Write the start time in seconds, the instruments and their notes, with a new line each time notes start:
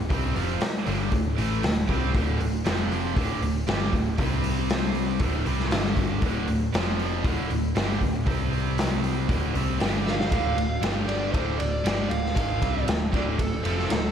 0.09 picked electric bass C2, distorted electric guitar C3 G3 C4, kick, open hi-hat
0.35 picked electric bass F1, distorted electric guitar F2 C3 F3, open hi-hat
0.61 muted distorted electric guitar stroke, snare, open hi-hat
0.86 picked electric bass G1, distorted electric guitar G2 D3 G3, open hi-hat
1.11 picked electric bass D1, distorted electric guitar D2 A2, kick, open hi-hat
1.38 picked electric bass A1, distorted electric guitar A2 E3 A3, open hi-hat
1.63 picked electric bass D1, distorted electric guitar D2 A2, snare, open hi-hat
1.89 picked electric bass C2, distorted electric guitar C3 G3 C4, kick, open hi-hat
2.14 picked electric bass D1, distorted electric guitar D2 A2 D3, kick, open hi-hat
2.40 picked electric bass D1, distorted electric guitar D2 A2, open hi-hat
2.65 picked electric bass F1, distorted electric guitar F2 C3 F3, snare, open hi-hat
2.92 open hi-hat
3.16 picked electric bass D1, distorted electric guitar D2 A2 D3, kick, open hi-hat
3.41 picked electric bass D1, distorted electric guitar D2 A2, open hi-hat
3.67 picked electric bass G1, distorted electric guitar G2 D3 G3, snare, open hi-hat
3.82 snare
3.93 picked electric bass D1, distorted electric guitar D2 A2, kick, open hi-hat
4.18 picked electric bass C2, distorted electric guitar C3 G3 C4, kick, open hi-hat
4.44 open hi-hat
4.69 snare, open hi-hat
4.95 open hi-hat
5.20 picked electric bass D1, distorted electric guitar D2 A2 D3, kick, open hi-hat
5.46 picked electric bass C2, distorted electric guitar C3 G3 C4, open hi-hat
5.60 snare
5.71 picked electric bass G1, distorted electric guitar G2 D3 G3, snare, open hi-hat
5.85 snare
5.96 kick, open hi-hat
6.22 picked electric bass D1, distorted electric guitar D2 A2 D3, kick, open hi-hat
6.48 picked electric bass D1, distorted electric guitar D2 A2, open hi-hat
6.74 picked electric bass F1, distorted electric guitar F2 C3 F3, snare, open hi-hat
6.99 open hi-hat
7.24 picked electric bass D1, distorted electric guitar D2 A2 D3, kick, open hi-hat
7.50 picked electric bass D1, distorted electric guitar D2 A2, open hi-hat
7.76 picked electric bass G1, distorted electric guitar G2 D3 G3, snare, open hi-hat
8.01 picked electric bass D1, distorted electric guitar D2 A2, kick, open hi-hat
8.26 picked electric bass C2, distorted electric guitar C3 G3 C4, kick, open hi-hat
8.53 open hi-hat
8.78 snare, open hi-hat
9.04 open hi-hat
9.29 picked electric bass D1, distorted electric guitar D2 A2 D3, kick, open hi-hat
9.53 picked electric bass C2, distorted electric guitar C3 G3 C4, open hi-hat
9.79 picked electric bass G1, distorted electric guitar G2 D3 G3, snare, open hi-hat
10.06 lead electric guitar F5, snare
10.20 snare
10.31 picked electric bass D1, distorted electric guitar D2 A2 D3, kick, ride
10.56 picked electric bass D1, distorted electric guitar D2 A2, ride
10.81 picked electric bass G1, distorted electric guitar G2 D3 G3, snare, ride
11.08 lead electric guitar D5, ride
11.32 picked electric bass D1, distorted electric guitar D2 A2 D3, lead electric guitar C5, kick, ride
11.58 picked electric bass D1, distorted electric guitar D2 A2, lead electric guitar D5, ride
11.84 picked electric bass G1, distorted electric guitar G2 D3 G3, snare, ride
12.09 picked electric bass D1, distorted electric guitar D2 A2, lead electric guitar F5, ride
12.26 snare
12.34 picked electric bass G#1, distorted electric guitar G#2 D#3 G#3, kick, ride
12.60 picked electric bass C2, distorted electric guitar C3 G3 C4, kick, ride
12.87 picked electric bass D1, distorted electric guitar D2 A2, snare, ride
13.12 picked electric bass D1, distorted electric guitar D2 A2 D3, kick, ride
13.16 lead electric guitar D5
13.39 picked electric bass D1, distorted electric guitar D2 A2, lead electric guitar A4, kick, ride
13.63 picked electric bass F1, distorted electric guitar F2 C3 F3, lead electric guitar A4, ride
13.79 snare
13.89 picked electric bass D1, distorted electric guitar D2 A2, snare, ride